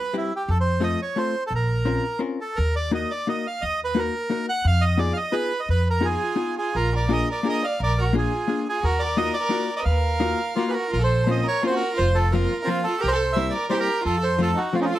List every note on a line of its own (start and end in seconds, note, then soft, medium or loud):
0.00 0.16 B4 medium
0.13 0.31 G3 soft
0.13 0.31 C4 soft
0.13 0.31 E4 soft
0.13 0.31 G4 soft
0.17 0.33 E4 medium
0.36 0.51 G4 medium
0.48 0.93 F2 medium
0.48 0.58 A4 medium
0.60 0.85 C5 medium
0.80 0.99 A3 medium
0.80 0.99 C4 medium
0.80 0.99 F4 medium
0.80 0.99 A4 medium
0.80 1.01 D#5 medium
1.02 1.18 C#5 medium
1.16 1.34 A3 soft
1.16 1.34 C4 soft
1.16 1.34 F4 soft
1.16 1.34 A4 medium
1.16 1.44 C5 medium
1.47 1.97 A#1 medium
1.47 1.53 A4 medium
1.55 2.20 A#4 medium
1.85 2.04 C4 medium
1.85 2.04 C#4 soft
1.85 2.04 F4 medium
1.85 2.04 A#4 medium
2.19 2.39 C4 medium
2.19 2.39 C#4 medium
2.19 2.39 F4 soft
2.19 2.39 A#4 medium
2.41 2.58 A4 medium
2.56 3.03 D#2 medium
2.56 2.75 A#4 medium
2.76 2.91 D5 medium
2.91 3.10 A#3 medium
2.91 3.10 D#4 medium
2.91 3.11 F#4 medium
2.91 3.11 A#4 medium
2.91 3.12 D#5 medium
3.11 3.28 D5 medium
3.27 3.45 A#3 soft
3.27 3.46 D#4 medium
3.27 3.46 F#4 soft
3.27 3.46 A#4 medium
3.27 3.47 D#5 medium
3.47 3.64 F5 medium
3.62 4.07 D#2 medium
3.62 3.80 D#5 loud
3.84 4.00 B4 loud
3.95 4.13 A#3 medium
3.95 4.14 D#4 medium
3.95 4.14 F#4 medium
3.95 4.14 A#4 medium
3.99 4.46 A#4 medium
4.30 4.48 A#3 medium
4.30 4.48 D#4 soft
4.30 4.48 F#4 soft
4.30 4.49 A#4 medium
4.49 4.66 F#5 loud
4.65 5.10 F2 medium
4.65 4.84 F5 loud
4.81 4.99 D#5 loud
4.98 5.16 B3 medium
4.98 5.17 D#4 medium
4.98 5.17 F4 soft
4.98 5.17 G#4 medium
4.98 5.13 D5 medium
5.13 5.35 D#5 medium
5.13 5.18 F5 medium
5.32 5.51 B3 soft
5.32 5.51 D#4 soft
5.32 5.51 F4 soft
5.32 5.52 G#4 medium
5.32 5.60 B4 medium
5.60 5.69 D#5 medium
5.69 6.15 F2 medium
5.69 5.88 B4 medium
5.90 6.06 A#4 medium
6.00 6.21 B3 medium
6.00 6.21 D#4 medium
6.00 6.52 F4 medium
6.00 6.21 F4 soft
6.00 6.21 G#4 medium
6.05 6.55 G#4 medium
6.36 6.56 B3 soft
6.36 6.56 D#4 soft
6.36 6.57 F4 soft
6.36 6.57 G#4 soft
6.58 6.74 F4 medium
6.58 6.76 G#4 medium
6.75 7.21 A#1 medium
6.75 6.92 F4 medium
6.75 6.94 A#4 medium
6.95 7.08 A#4 medium
6.95 7.13 D5 medium
7.09 7.28 A#3 medium
7.09 7.28 D4 medium
7.09 7.28 F4 medium
7.09 7.29 G#4 medium
7.09 7.27 A#4 medium
7.13 7.29 D#5 medium
7.29 7.43 A#4 medium
7.29 7.48 D5 medium
7.43 7.62 A#3 medium
7.43 7.63 D4 soft
7.43 7.63 F4 soft
7.43 7.63 G#4 medium
7.43 7.61 A#4 medium
7.49 7.66 D#5 medium
7.64 7.80 D5 medium
7.64 7.81 F5 medium
7.80 8.25 A#1 medium
7.80 7.97 A#4 medium
7.80 8.00 D5 medium
7.98 8.15 F#4 medium
7.98 8.15 A#4 medium
8.13 8.31 A#3 medium
8.13 8.32 D4 medium
8.13 8.32 F4 medium
8.13 8.64 F4 medium
8.13 8.33 G#4 medium
8.18 8.67 G#4 medium
8.48 8.66 A#3 medium
8.48 8.66 D4 soft
8.48 8.66 F4 soft
8.48 8.66 G#4 soft
8.69 8.83 F4 medium
8.69 8.85 G#4 medium
8.83 9.28 D#2 medium
8.83 9.00 F#4 medium
8.83 9.02 A#4 medium
8.99 9.17 D5 medium
9.04 9.18 A#4 medium
9.17 9.35 A#3 medium
9.17 9.35 D#4 medium
9.17 9.35 F4 medium
9.17 9.35 F#4 medium
9.17 9.35 D#5 loud
9.22 9.36 A#4 medium
9.34 9.75 D5 medium
9.40 9.77 A#4 medium
9.49 9.68 A#3 medium
9.49 9.68 D#4 medium
9.49 9.69 F4 soft
9.49 9.69 F#4 medium
9.76 9.81 A#4 medium
9.76 9.80 D5 medium
9.76 9.85 D#5 medium
9.81 9.83 B4 medium
9.81 10.71 F5 medium
9.86 10.32 D#2 medium
9.86 9.88 B4 medium
9.92 10.56 A#4 medium
10.20 10.39 A#3 medium
10.20 10.39 D#4 medium
10.20 10.39 F4 medium
10.20 10.39 F#4 medium
10.55 10.75 A#3 medium
10.55 10.70 A#3 medium
10.55 10.76 D#4 soft
10.55 10.69 F4 medium
10.55 10.76 F4 medium
10.55 10.76 F#4 medium
10.69 10.74 G#4 medium
10.69 10.74 B4 medium
10.73 10.89 F#4 medium
10.73 10.91 A#4 medium
10.90 11.40 A#1 medium
10.90 11.00 F4 medium
10.90 11.03 A#4 medium
11.01 11.26 A4 medium
11.01 11.31 C5 medium
11.26 11.46 A#3 medium
11.26 11.46 C4 medium
11.26 11.46 C#4 soft
11.26 11.47 F4 medium
11.26 11.44 C5 medium
11.31 11.47 D#5 medium
11.45 11.62 A#4 medium
11.45 11.63 C#5 loud
11.63 11.82 A#3 medium
11.63 11.82 C4 medium
11.63 11.82 C#4 soft
11.63 11.69 F4 medium
11.63 11.82 F4 medium
11.63 11.75 C5 medium
11.70 11.94 F#4 medium
11.76 11.99 A#4 medium
11.94 12.13 F4 medium
11.94 12.17 C5 loud
11.99 12.44 F1 medium
12.15 12.32 F4 medium
12.15 12.34 A4 loud
12.32 12.52 F3 medium
12.32 12.52 A#3 medium
12.32 12.52 C4 medium
12.32 12.64 F4 medium
12.32 12.52 F4 medium
12.32 12.69 A#4 medium
12.64 12.86 F3 medium
12.64 12.86 A#3 medium
12.64 12.83 C4 medium
12.64 12.86 C4 soft
12.64 12.85 F4 loud
12.69 12.86 F4 medium
12.84 12.99 F4 medium
12.84 13.01 A4 medium
13.00 13.48 C2 medium
13.00 13.10 G4 medium
13.00 13.11 A#4 loud
13.08 13.36 A4 medium
13.08 13.36 C5 loud
13.33 13.55 G3 medium
13.33 13.55 A#3 medium
13.33 13.53 E5 medium
13.37 13.55 C4 medium
13.37 13.55 E4 medium
13.37 13.53 C5 medium
13.50 13.68 A#4 medium
13.50 13.66 D5 medium
13.70 13.88 G3 medium
13.70 13.88 A#3 soft
13.70 13.88 C4 medium
13.70 13.89 E4 medium
13.70 13.79 G4 medium
13.70 13.74 A#4 medium
13.70 13.80 C5 medium
13.70 13.72 D5 medium
13.79 14.03 G4 medium
13.79 14.04 A#4 loud
14.03 14.51 F2 medium
14.03 14.19 F4 medium
14.03 14.24 A4 medium
14.20 14.37 A4 medium
14.20 14.41 C5 medium
14.38 14.57 F3 medium
14.38 14.58 A3 medium
14.38 14.58 C4 soft
14.38 14.55 F4 medium
14.38 14.58 F4 medium
14.38 14.59 A4 medium
14.55 14.73 D#4 medium
14.55 14.75 F#4 medium
14.73 14.92 F3 medium
14.73 14.93 A3 medium
14.73 14.78 C4 medium
14.73 14.93 C4 soft
14.73 14.80 F4 medium
14.73 14.93 F4 soft
14.80 14.82 C4 medium
14.80 14.91 C#4 medium
14.80 14.85 D#4 medium
14.85 14.94 F4 medium
14.91 14.99 F4 medium
14.91 14.99 A4 medium